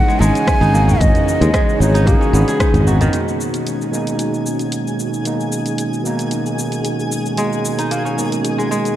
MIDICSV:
0, 0, Header, 1, 9, 480
1, 0, Start_track
1, 0, Key_signature, 5, "minor"
1, 0, Tempo, 530973
1, 909, Time_signature, 4, 2, 24, 8
1, 8101, End_track
2, 0, Start_track
2, 0, Title_t, "Ney"
2, 0, Program_c, 0, 77
2, 0, Note_on_c, 0, 78, 113
2, 177, Note_on_c, 0, 82, 111
2, 191, Note_off_c, 0, 78, 0
2, 222, Note_on_c, 0, 80, 121
2, 231, Note_off_c, 0, 82, 0
2, 897, Note_on_c, 0, 75, 102
2, 911, Note_off_c, 0, 80, 0
2, 1623, Note_on_c, 0, 73, 95
2, 1637, Note_off_c, 0, 75, 0
2, 1865, Note_on_c, 0, 68, 83
2, 1878, Note_off_c, 0, 73, 0
2, 2587, Note_off_c, 0, 68, 0
2, 8101, End_track
3, 0, Start_track
3, 0, Title_t, "Synth texture"
3, 0, Program_c, 1, 99
3, 2821, Note_on_c, 1, 80, 79
3, 2824, Note_on_c, 1, 68, 74
3, 8101, Note_off_c, 1, 68, 0
3, 8101, Note_off_c, 1, 80, 0
3, 8101, End_track
4, 0, Start_track
4, 0, Title_t, "Synth drone"
4, 0, Program_c, 2, 95
4, 0, Note_on_c, 2, 56, 74
4, 0, Note_on_c, 2, 61, 80
4, 0, Note_on_c, 2, 63, 77
4, 0, Note_on_c, 2, 66, 91
4, 8101, Note_off_c, 2, 56, 0
4, 8101, Note_off_c, 2, 61, 0
4, 8101, Note_off_c, 2, 63, 0
4, 8101, Note_off_c, 2, 66, 0
4, 8101, End_track
5, 0, Start_track
5, 0, Title_t, "Kora"
5, 0, Program_c, 3, 46
5, 0, Note_on_c, 3, 58, 83
5, 0, Note_on_c, 3, 61, 80
5, 0, Note_on_c, 3, 63, 99
5, 73, Note_on_c, 3, 56, 81
5, 176, Note_off_c, 3, 56, 0
5, 186, Note_on_c, 3, 56, 108
5, 549, Note_off_c, 3, 63, 0
5, 553, Note_on_c, 3, 63, 107
5, 663, Note_off_c, 3, 58, 0
5, 667, Note_on_c, 3, 58, 79
5, 791, Note_off_c, 3, 61, 0
5, 795, Note_on_c, 3, 61, 81
5, 1266, Note_off_c, 3, 56, 0
5, 1276, Note_on_c, 3, 56, 76
5, 1377, Note_off_c, 3, 56, 0
5, 1388, Note_on_c, 3, 56, 101
5, 1753, Note_off_c, 3, 63, 0
5, 1757, Note_on_c, 3, 63, 104
5, 1865, Note_off_c, 3, 58, 0
5, 1869, Note_on_c, 3, 58, 80
5, 1993, Note_off_c, 3, 61, 0
5, 1997, Note_on_c, 3, 61, 79
5, 2109, Note_on_c, 3, 59, 74
5, 2163, Note_off_c, 3, 58, 0
5, 2240, Note_on_c, 3, 68, 72
5, 2349, Note_off_c, 3, 63, 0
5, 2353, Note_on_c, 3, 63, 82
5, 2594, Note_on_c, 3, 66, 74
5, 2722, Note_on_c, 3, 51, 102
5, 2755, Note_off_c, 3, 56, 0
5, 2875, Note_off_c, 3, 51, 0
5, 3473, Note_off_c, 3, 68, 0
5, 3569, Note_off_c, 3, 61, 0
5, 3793, Note_off_c, 3, 59, 0
5, 3819, Note_off_c, 3, 63, 0
5, 3916, Note_off_c, 3, 66, 0
5, 6671, Note_on_c, 3, 56, 87
5, 7040, Note_on_c, 3, 63, 85
5, 7152, Note_on_c, 3, 58, 72
5, 7277, Note_on_c, 3, 61, 68
5, 7748, Note_off_c, 3, 56, 0
5, 7759, Note_on_c, 3, 56, 70
5, 7863, Note_off_c, 3, 56, 0
5, 7874, Note_on_c, 3, 56, 92
5, 8101, Note_off_c, 3, 56, 0
5, 8101, Note_off_c, 3, 58, 0
5, 8101, Note_off_c, 3, 61, 0
5, 8101, Note_off_c, 3, 63, 0
5, 8101, End_track
6, 0, Start_track
6, 0, Title_t, "Tine electric piano"
6, 0, Program_c, 4, 4
6, 0, Control_c, 4, 64, 127
6, 0, Note_on_c, 4, 49, 104
6, 0, Note_on_c, 4, 51, 96
6, 0, Note_on_c, 4, 52, 86
6, 0, Note_on_c, 4, 56, 90
6, 0, Note_on_c, 4, 59, 80
6, 0, Note_on_c, 4, 63, 104
6, 873, Note_off_c, 4, 49, 0
6, 878, Note_off_c, 4, 52, 0
6, 883, Note_off_c, 4, 56, 0
6, 887, Note_on_c, 4, 49, 85
6, 892, Note_off_c, 4, 63, 0
6, 895, Note_on_c, 4, 52, 77
6, 906, Note_on_c, 4, 56, 78
6, 925, Note_on_c, 4, 63, 97
6, 1591, Note_off_c, 4, 49, 0
6, 1595, Note_off_c, 4, 52, 0
6, 1601, Note_off_c, 4, 56, 0
6, 1611, Note_off_c, 4, 63, 0
6, 1612, Note_on_c, 4, 49, 93
6, 1619, Note_on_c, 4, 52, 91
6, 1627, Note_on_c, 4, 56, 89
6, 1649, Note_on_c, 4, 63, 110
6, 2558, Note_off_c, 4, 49, 0
6, 2562, Note_off_c, 4, 52, 0
6, 2566, Note_off_c, 4, 56, 0
6, 2577, Note_off_c, 4, 63, 0
6, 2580, Note_on_c, 4, 49, 84
6, 2587, Note_on_c, 4, 52, 75
6, 2589, Note_on_c, 4, 56, 74
6, 2594, Note_off_c, 4, 59, 0
6, 2594, Note_on_c, 4, 59, 77
6, 2598, Note_on_c, 4, 63, 90
6, 2798, Note_off_c, 4, 49, 0
6, 2801, Note_off_c, 4, 52, 0
6, 2802, Note_off_c, 4, 56, 0
6, 2805, Note_off_c, 4, 59, 0
6, 2807, Note_off_c, 4, 63, 0
6, 2813, Note_on_c, 4, 47, 65
6, 2820, Note_off_c, 4, 51, 0
6, 2820, Note_on_c, 4, 51, 59
6, 2830, Note_on_c, 4, 56, 63
6, 2838, Note_on_c, 4, 58, 59
6, 2841, Control_c, 4, 64, 0
6, 2849, Note_on_c, 4, 63, 79
6, 2995, Control_c, 4, 64, 127
6, 3514, Note_off_c, 4, 47, 0
6, 3518, Note_off_c, 4, 51, 0
6, 3523, Note_off_c, 4, 56, 0
6, 3527, Note_off_c, 4, 58, 0
6, 3532, Note_off_c, 4, 63, 0
6, 3534, Note_on_c, 4, 47, 84
6, 3543, Note_on_c, 4, 51, 72
6, 3552, Note_on_c, 4, 56, 72
6, 3560, Note_on_c, 4, 58, 75
6, 3569, Note_on_c, 4, 63, 90
6, 4715, Note_off_c, 4, 47, 0
6, 4719, Note_off_c, 4, 51, 0
6, 4724, Note_off_c, 4, 56, 0
6, 4728, Note_off_c, 4, 58, 0
6, 4732, Note_off_c, 4, 63, 0
6, 4733, Note_on_c, 4, 47, 67
6, 4742, Note_on_c, 4, 51, 67
6, 4751, Note_on_c, 4, 56, 64
6, 4757, Note_on_c, 4, 58, 63
6, 4768, Note_on_c, 4, 63, 81
6, 5435, Note_off_c, 4, 47, 0
6, 5439, Note_off_c, 4, 51, 0
6, 5443, Note_off_c, 4, 56, 0
6, 5446, Note_off_c, 4, 58, 0
6, 5448, Note_on_c, 4, 47, 83
6, 5452, Note_off_c, 4, 63, 0
6, 5459, Note_on_c, 4, 51, 76
6, 5469, Note_on_c, 4, 56, 75
6, 5477, Note_on_c, 4, 58, 77
6, 5485, Note_on_c, 4, 63, 94
6, 6632, Note_off_c, 4, 47, 0
6, 6637, Note_off_c, 4, 51, 0
6, 6642, Note_off_c, 4, 56, 0
6, 6646, Note_off_c, 4, 58, 0
6, 6648, Note_on_c, 4, 47, 73
6, 6650, Note_off_c, 4, 63, 0
6, 6657, Note_on_c, 4, 51, 70
6, 6666, Note_on_c, 4, 56, 67
6, 6675, Note_on_c, 4, 58, 68
6, 6682, Note_on_c, 4, 63, 81
6, 7352, Note_off_c, 4, 47, 0
6, 7356, Note_off_c, 4, 51, 0
6, 7361, Note_off_c, 4, 56, 0
6, 7365, Note_off_c, 4, 58, 0
6, 7369, Note_off_c, 4, 63, 0
6, 7369, Note_on_c, 4, 47, 85
6, 7379, Note_on_c, 4, 51, 81
6, 7388, Note_on_c, 4, 56, 80
6, 7398, Note_on_c, 4, 58, 77
6, 7406, Note_on_c, 4, 63, 94
6, 8101, Note_off_c, 4, 47, 0
6, 8101, Note_off_c, 4, 51, 0
6, 8101, Note_off_c, 4, 56, 0
6, 8101, Note_off_c, 4, 58, 0
6, 8101, Note_off_c, 4, 63, 0
6, 8101, End_track
7, 0, Start_track
7, 0, Title_t, "Fretless electric bass"
7, 0, Program_c, 5, 35
7, 185, Note_on_c, 5, 32, 93
7, 273, Note_off_c, 5, 32, 0
7, 553, Note_on_c, 5, 32, 95
7, 849, Note_off_c, 5, 32, 0
7, 909, Note_on_c, 5, 32, 100
7, 995, Note_off_c, 5, 32, 0
7, 1277, Note_on_c, 5, 39, 86
7, 1352, Note_off_c, 5, 39, 0
7, 1629, Note_on_c, 5, 32, 88
7, 1931, Note_off_c, 5, 32, 0
7, 2109, Note_on_c, 5, 32, 96
7, 2195, Note_off_c, 5, 32, 0
7, 2475, Note_on_c, 5, 32, 91
7, 2770, Note_off_c, 5, 32, 0
7, 8101, End_track
8, 0, Start_track
8, 0, Title_t, "Darbuka"
8, 77, Note_on_c, 9, 62, 38
8, 167, Note_off_c, 9, 62, 0
8, 663, Note_on_c, 9, 63, 56
8, 754, Note_off_c, 9, 63, 0
8, 791, Note_on_c, 9, 62, 54
8, 794, Note_on_c, 9, 63, 37
8, 799, Note_on_c, 9, 64, 85
8, 881, Note_off_c, 9, 62, 0
8, 884, Note_off_c, 9, 63, 0
8, 890, Note_off_c, 9, 64, 0
8, 1037, Note_on_c, 9, 64, 85
8, 1127, Note_off_c, 9, 64, 0
8, 1148, Note_on_c, 9, 62, 51
8, 1152, Note_on_c, 9, 63, 61
8, 1238, Note_off_c, 9, 62, 0
8, 1242, Note_off_c, 9, 63, 0
8, 1995, Note_on_c, 9, 62, 38
8, 2086, Note_off_c, 9, 62, 0
8, 2118, Note_on_c, 9, 63, 38
8, 2208, Note_off_c, 9, 63, 0
8, 2241, Note_on_c, 9, 63, 72
8, 2331, Note_off_c, 9, 63, 0
8, 2477, Note_on_c, 9, 64, 86
8, 2567, Note_off_c, 9, 64, 0
8, 2716, Note_on_c, 9, 64, 92
8, 2807, Note_off_c, 9, 64, 0
8, 8101, End_track
9, 0, Start_track
9, 0, Title_t, "Drums"
9, 87, Note_on_c, 9, 82, 21
9, 177, Note_off_c, 9, 82, 0
9, 200, Note_on_c, 9, 82, 78
9, 290, Note_off_c, 9, 82, 0
9, 320, Note_on_c, 9, 42, 32
9, 328, Note_on_c, 9, 82, 31
9, 410, Note_off_c, 9, 42, 0
9, 419, Note_off_c, 9, 82, 0
9, 429, Note_on_c, 9, 36, 95
9, 431, Note_on_c, 9, 37, 99
9, 431, Note_on_c, 9, 42, 65
9, 439, Note_on_c, 9, 82, 42
9, 519, Note_off_c, 9, 36, 0
9, 521, Note_off_c, 9, 37, 0
9, 521, Note_off_c, 9, 42, 0
9, 529, Note_off_c, 9, 82, 0
9, 566, Note_on_c, 9, 82, 22
9, 657, Note_off_c, 9, 82, 0
9, 677, Note_on_c, 9, 82, 70
9, 767, Note_off_c, 9, 82, 0
9, 806, Note_on_c, 9, 82, 31
9, 897, Note_off_c, 9, 82, 0
9, 909, Note_on_c, 9, 36, 106
9, 914, Note_on_c, 9, 42, 73
9, 922, Note_on_c, 9, 82, 46
9, 1000, Note_off_c, 9, 36, 0
9, 1004, Note_off_c, 9, 42, 0
9, 1012, Note_off_c, 9, 82, 0
9, 1039, Note_on_c, 9, 42, 33
9, 1047, Note_on_c, 9, 82, 22
9, 1130, Note_off_c, 9, 42, 0
9, 1138, Note_off_c, 9, 82, 0
9, 1163, Note_on_c, 9, 82, 75
9, 1253, Note_off_c, 9, 82, 0
9, 1281, Note_on_c, 9, 42, 47
9, 1289, Note_on_c, 9, 82, 33
9, 1371, Note_off_c, 9, 42, 0
9, 1379, Note_off_c, 9, 82, 0
9, 1390, Note_on_c, 9, 36, 96
9, 1392, Note_on_c, 9, 37, 106
9, 1392, Note_on_c, 9, 42, 68
9, 1400, Note_on_c, 9, 82, 41
9, 1480, Note_off_c, 9, 36, 0
9, 1482, Note_off_c, 9, 37, 0
9, 1482, Note_off_c, 9, 42, 0
9, 1490, Note_off_c, 9, 82, 0
9, 1530, Note_on_c, 9, 82, 22
9, 1620, Note_off_c, 9, 82, 0
9, 1643, Note_on_c, 9, 82, 79
9, 1733, Note_off_c, 9, 82, 0
9, 1764, Note_on_c, 9, 42, 48
9, 1772, Note_on_c, 9, 82, 34
9, 1854, Note_off_c, 9, 42, 0
9, 1862, Note_off_c, 9, 82, 0
9, 1870, Note_on_c, 9, 36, 105
9, 1875, Note_on_c, 9, 42, 65
9, 1883, Note_on_c, 9, 82, 42
9, 1960, Note_off_c, 9, 36, 0
9, 1965, Note_off_c, 9, 42, 0
9, 1973, Note_off_c, 9, 82, 0
9, 2009, Note_on_c, 9, 82, 21
9, 2100, Note_off_c, 9, 82, 0
9, 2120, Note_on_c, 9, 82, 78
9, 2210, Note_off_c, 9, 82, 0
9, 2240, Note_on_c, 9, 42, 34
9, 2248, Note_on_c, 9, 82, 32
9, 2331, Note_off_c, 9, 42, 0
9, 2339, Note_off_c, 9, 82, 0
9, 2350, Note_on_c, 9, 36, 98
9, 2353, Note_on_c, 9, 37, 99
9, 2353, Note_on_c, 9, 42, 69
9, 2361, Note_on_c, 9, 82, 40
9, 2440, Note_off_c, 9, 36, 0
9, 2443, Note_off_c, 9, 37, 0
9, 2443, Note_off_c, 9, 42, 0
9, 2451, Note_off_c, 9, 82, 0
9, 2479, Note_on_c, 9, 42, 33
9, 2487, Note_on_c, 9, 82, 23
9, 2570, Note_off_c, 9, 42, 0
9, 2578, Note_off_c, 9, 82, 0
9, 2598, Note_on_c, 9, 82, 69
9, 2688, Note_off_c, 9, 82, 0
9, 2719, Note_on_c, 9, 42, 32
9, 2727, Note_on_c, 9, 82, 33
9, 2810, Note_off_c, 9, 42, 0
9, 2818, Note_off_c, 9, 82, 0
9, 2830, Note_on_c, 9, 42, 61
9, 2838, Note_on_c, 9, 82, 38
9, 2920, Note_off_c, 9, 42, 0
9, 2928, Note_off_c, 9, 82, 0
9, 2969, Note_on_c, 9, 82, 19
9, 3059, Note_off_c, 9, 82, 0
9, 3080, Note_on_c, 9, 82, 63
9, 3170, Note_off_c, 9, 82, 0
9, 3199, Note_on_c, 9, 42, 43
9, 3207, Note_on_c, 9, 82, 29
9, 3289, Note_off_c, 9, 42, 0
9, 3298, Note_off_c, 9, 82, 0
9, 3314, Note_on_c, 9, 42, 59
9, 3322, Note_on_c, 9, 82, 35
9, 3404, Note_off_c, 9, 42, 0
9, 3412, Note_off_c, 9, 82, 0
9, 3448, Note_on_c, 9, 82, 20
9, 3539, Note_off_c, 9, 82, 0
9, 3560, Note_on_c, 9, 82, 64
9, 3651, Note_off_c, 9, 82, 0
9, 3680, Note_on_c, 9, 42, 39
9, 3688, Note_on_c, 9, 82, 29
9, 3770, Note_off_c, 9, 42, 0
9, 3778, Note_off_c, 9, 82, 0
9, 3788, Note_on_c, 9, 42, 56
9, 3796, Note_on_c, 9, 82, 37
9, 3879, Note_off_c, 9, 42, 0
9, 3887, Note_off_c, 9, 82, 0
9, 3924, Note_on_c, 9, 82, 19
9, 4014, Note_off_c, 9, 82, 0
9, 4034, Note_on_c, 9, 82, 70
9, 4125, Note_off_c, 9, 82, 0
9, 4153, Note_on_c, 9, 42, 27
9, 4161, Note_on_c, 9, 82, 28
9, 4243, Note_off_c, 9, 42, 0
9, 4251, Note_off_c, 9, 82, 0
9, 4267, Note_on_c, 9, 42, 59
9, 4275, Note_on_c, 9, 82, 37
9, 4357, Note_off_c, 9, 42, 0
9, 4365, Note_off_c, 9, 82, 0
9, 4407, Note_on_c, 9, 82, 20
9, 4497, Note_off_c, 9, 82, 0
9, 4516, Note_on_c, 9, 82, 63
9, 4607, Note_off_c, 9, 82, 0
9, 4644, Note_on_c, 9, 82, 30
9, 4735, Note_off_c, 9, 82, 0
9, 4749, Note_on_c, 9, 42, 61
9, 4757, Note_on_c, 9, 82, 41
9, 4840, Note_off_c, 9, 42, 0
9, 4848, Note_off_c, 9, 82, 0
9, 4886, Note_on_c, 9, 82, 19
9, 4976, Note_off_c, 9, 82, 0
9, 4993, Note_on_c, 9, 82, 68
9, 5083, Note_off_c, 9, 82, 0
9, 5114, Note_on_c, 9, 42, 40
9, 5122, Note_on_c, 9, 82, 31
9, 5204, Note_off_c, 9, 42, 0
9, 5212, Note_off_c, 9, 82, 0
9, 5227, Note_on_c, 9, 42, 54
9, 5235, Note_on_c, 9, 82, 38
9, 5317, Note_off_c, 9, 42, 0
9, 5326, Note_off_c, 9, 82, 0
9, 5365, Note_on_c, 9, 82, 21
9, 5455, Note_off_c, 9, 82, 0
9, 5475, Note_on_c, 9, 82, 70
9, 5566, Note_off_c, 9, 82, 0
9, 5596, Note_on_c, 9, 42, 41
9, 5604, Note_on_c, 9, 82, 32
9, 5686, Note_off_c, 9, 42, 0
9, 5694, Note_off_c, 9, 82, 0
9, 5705, Note_on_c, 9, 42, 57
9, 5713, Note_on_c, 9, 82, 36
9, 5795, Note_off_c, 9, 42, 0
9, 5803, Note_off_c, 9, 82, 0
9, 5841, Note_on_c, 9, 82, 21
9, 5931, Note_off_c, 9, 82, 0
9, 5955, Note_on_c, 9, 82, 75
9, 6046, Note_off_c, 9, 82, 0
9, 6075, Note_on_c, 9, 42, 27
9, 6083, Note_on_c, 9, 82, 30
9, 6165, Note_off_c, 9, 42, 0
9, 6173, Note_off_c, 9, 82, 0
9, 6188, Note_on_c, 9, 42, 61
9, 6196, Note_on_c, 9, 82, 36
9, 6279, Note_off_c, 9, 42, 0
9, 6287, Note_off_c, 9, 82, 0
9, 6325, Note_on_c, 9, 82, 20
9, 6415, Note_off_c, 9, 82, 0
9, 6436, Note_on_c, 9, 82, 68
9, 6526, Note_off_c, 9, 82, 0
9, 6562, Note_on_c, 9, 82, 30
9, 6653, Note_off_c, 9, 82, 0
9, 6666, Note_on_c, 9, 42, 59
9, 6674, Note_on_c, 9, 82, 40
9, 6757, Note_off_c, 9, 42, 0
9, 6765, Note_off_c, 9, 82, 0
9, 6804, Note_on_c, 9, 82, 21
9, 6895, Note_off_c, 9, 82, 0
9, 6917, Note_on_c, 9, 82, 73
9, 7008, Note_off_c, 9, 82, 0
9, 7039, Note_on_c, 9, 42, 39
9, 7047, Note_on_c, 9, 82, 31
9, 7129, Note_off_c, 9, 42, 0
9, 7137, Note_off_c, 9, 82, 0
9, 7153, Note_on_c, 9, 42, 58
9, 7161, Note_on_c, 9, 82, 40
9, 7243, Note_off_c, 9, 42, 0
9, 7251, Note_off_c, 9, 82, 0
9, 7289, Note_on_c, 9, 82, 21
9, 7379, Note_off_c, 9, 82, 0
9, 7400, Note_on_c, 9, 82, 67
9, 7491, Note_off_c, 9, 82, 0
9, 7523, Note_on_c, 9, 42, 38
9, 7532, Note_on_c, 9, 82, 29
9, 7614, Note_off_c, 9, 42, 0
9, 7622, Note_off_c, 9, 82, 0
9, 7635, Note_on_c, 9, 42, 55
9, 7643, Note_on_c, 9, 82, 38
9, 7726, Note_off_c, 9, 42, 0
9, 7734, Note_off_c, 9, 82, 0
9, 7772, Note_on_c, 9, 82, 22
9, 7862, Note_off_c, 9, 82, 0
9, 7883, Note_on_c, 9, 82, 70
9, 7973, Note_off_c, 9, 82, 0
9, 8003, Note_on_c, 9, 42, 25
9, 8011, Note_on_c, 9, 82, 32
9, 8093, Note_off_c, 9, 42, 0
9, 8101, Note_off_c, 9, 82, 0
9, 8101, End_track
0, 0, End_of_file